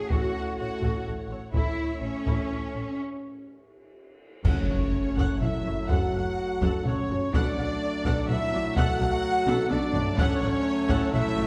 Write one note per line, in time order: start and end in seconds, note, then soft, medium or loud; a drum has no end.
0.00 1.37 A2 medium
0.00 1.37 A3 medium
0.00 1.38 C#4 medium
0.00 1.38 F#4 medium
0.00 0.11 G#4 medium
0.00 1.51 C#5 medium
0.00 1.51 F#5 medium
0.00 0.11 G#5 medium
0.10 0.18 A1 medium
0.10 0.57 F#4 medium
0.10 0.34 F#4 medium
0.10 0.34 A4 medium
0.10 0.57 F#5 medium
0.10 taiko medium
0.58 0.66 A1 soft
0.58 1.06 F#4 medium
0.58 0.68 A4 medium
0.58 0.67 C#5 medium
0.58 1.06 F#5 medium
0.82 0.90 A1 medium
0.82 1.05 F#4 medium
0.82 1.05 A4 medium
0.82 taiko medium
1.06 1.15 A1 medium
1.06 1.15 A4 medium
1.30 1.38 A1 soft
1.30 1.39 A4 medium
1.30 1.38 C#5 medium
1.54 1.62 A1 medium
1.54 2.96 A2 medium
1.54 2.96 A3 medium
1.54 2.97 C#4 medium
1.54 2.00 E4 medium
1.54 2.96 E4 medium
1.54 1.78 E4 medium
1.54 1.78 A4 medium
1.54 2.97 C#5 medium
1.54 1.99 E5 medium
1.54 2.97 E5 medium
1.54 taiko medium
2.02 2.10 A1 soft
2.02 2.98 C#4 medium
2.02 2.11 A4 medium
2.02 2.98 C#5 medium
2.02 2.10 C#5 soft
2.26 2.34 A1 medium
2.26 2.49 E4 medium
2.26 2.49 A4 medium
2.26 taiko medium
2.50 2.58 A1 medium
2.50 2.59 A4 medium
2.74 2.82 A1 soft
2.74 2.83 A4 medium
2.74 2.83 C#5 soft
4.44 4.53 F#1 medium
4.44 4.52 F#2 medium
4.44 5.14 F#2 loud
4.44 7.29 F#3 medium
4.44 7.29 A3 medium
4.44 5.38 C#4 loud
4.44 4.68 A4 medium
4.44 5.38 C#5 medium
4.44 5.39 C#5 medium
4.44 4.69 F#5 medium
4.44 concert bass drum medium
4.44 taiko loud
4.44 crash medium
4.44 impact medium
4.69 4.77 F#1 medium
4.69 4.77 F#2 medium
4.69 4.78 A4 medium
4.69 4.78 F#5 medium
5.17 5.26 F#1 medium
5.17 5.26 F#2 medium
5.17 5.40 A4 medium
5.17 5.40 F#5 medium
5.17 taiko medium
5.41 5.49 F#1 medium
5.41 5.50 F#2 medium
5.41 5.90 E4 loud
5.41 5.50 A4 medium
5.41 5.90 E5 medium
5.41 5.89 E5 medium
5.41 5.89 E5 loud
5.41 5.50 F#5 medium
5.41 taiko low-mid medium
5.65 5.73 F#1 medium
5.65 5.74 F#2 medium
5.65 5.74 F#4 medium
5.65 5.74 C#5 medium
5.89 5.99 F#1 medium
5.89 5.98 F#2 loud
5.89 6.86 F#4 loud
5.89 6.12 A4 medium
5.89 6.86 F#5 medium
5.89 6.12 F#5 medium
5.89 6.86 F#5 medium
5.89 6.87 F#5 medium
5.89 taiko loud
6.14 6.22 F#1 medium
6.14 6.22 F#2 medium
6.14 6.23 A4 medium
6.14 6.23 F#5 medium
6.61 6.71 F#1 loud
6.61 6.69 F#2 loud
6.61 6.85 A4 medium
6.61 6.84 F#5 medium
6.61 taiko medium
6.84 6.95 F#1 medium
6.84 6.94 F#2 medium
6.84 7.33 C#4 loud
6.84 6.95 A4 medium
6.84 7.33 C#5 loud
6.84 7.34 C#5 medium
6.84 7.33 C#5 medium
6.84 6.95 F#5 medium
6.84 taiko low-mid medium
7.10 7.18 F#1 medium
7.10 7.18 F#2 medium
7.10 7.18 F#4 medium
7.10 7.19 C#5 medium
7.32 7.42 B1 medium
7.32 7.41 B2 loud
7.32 8.26 D4 loud
7.32 7.56 A4 medium
7.32 8.28 D5 loud
7.32 8.27 D5 loud
7.32 8.29 D5 loud
7.32 7.56 F#5 loud
7.32 taiko loud
7.36 10.15 F#3 medium
7.36 10.15 A3 medium
7.56 7.66 B1 medium
7.56 7.64 B2 medium
7.56 7.67 A4 medium
7.56 7.67 F#5 medium
8.05 8.13 B1 loud
8.05 8.13 B2 loud
8.05 8.28 A4 medium
8.05 8.27 F#5 loud
8.05 taiko medium
8.27 8.37 B1 medium
8.27 8.37 B2 medium
8.27 8.76 E4 loud
8.27 8.37 A4 medium
8.27 8.74 E5 loud
8.27 8.75 E5 loud
8.27 8.77 E5 loud
8.27 8.37 F#5 medium
8.27 taiko low-mid medium
8.52 8.62 B1 medium
8.52 8.60 B2 medium
8.52 8.62 F#4 medium
8.52 8.62 D5 medium
8.75 8.85 B1 loud
8.75 8.84 B2 loud
8.75 9.69 F#4 loud
8.75 8.98 A4 loud
8.75 9.70 F#5 loud
8.75 9.69 F#5 loud
8.75 9.71 F#5 loud
8.75 8.99 F#5 loud
8.75 taiko loud
8.99 9.08 B1 medium
8.99 9.07 B2 medium
8.99 9.10 A4 medium
8.99 9.09 F#5 medium
9.47 9.56 B1 loud
9.47 9.55 B2 loud
9.47 9.69 A4 loud
9.47 9.69 F#5 loud
9.47 taiko high medium
9.70 9.79 B1 medium
9.70 9.78 B2 medium
9.70 10.18 D4 loud
9.70 9.78 A4 medium
9.70 10.17 D5 loud
9.70 10.19 D5 loud
9.70 9.79 F#5 medium
9.70 taiko high medium
9.93 10.02 B1 medium
9.93 10.02 B2 medium
9.93 10.02 F#4 medium
9.93 10.03 D5 medium
9.93 taiko low loud
10.17 10.26 A1 loud
10.17 10.26 A2 loud
10.17 11.47 F#3 loud
10.17 11.47 A3 loud
10.17 11.13 C#4 loud
10.17 10.40 A4 loud
10.17 11.13 C#5 loud
10.17 11.14 C#5 loud
10.17 10.96 C#5 loud
10.17 10.40 F#5 loud
10.17 taiko loud
10.41 10.49 A1 medium
10.41 10.50 A2 medium
10.41 10.50 A4 medium
10.41 10.50 F#5 medium
10.89 10.97 A1 loud
10.89 10.97 A2 loud
10.89 11.11 A4 loud
10.89 11.11 F#5 loud
10.89 taiko loud
11.11 11.21 A1 medium
11.11 11.20 A2 medium
11.11 11.47 E4 loud
11.11 11.21 A4 medium
11.11 11.47 E5 loud
11.11 11.21 F#5 medium
11.11 taiko low-mid medium
11.36 11.45 A1 medium
11.36 11.44 A2 medium
11.36 11.45 F#4 medium
11.36 11.46 C#5 medium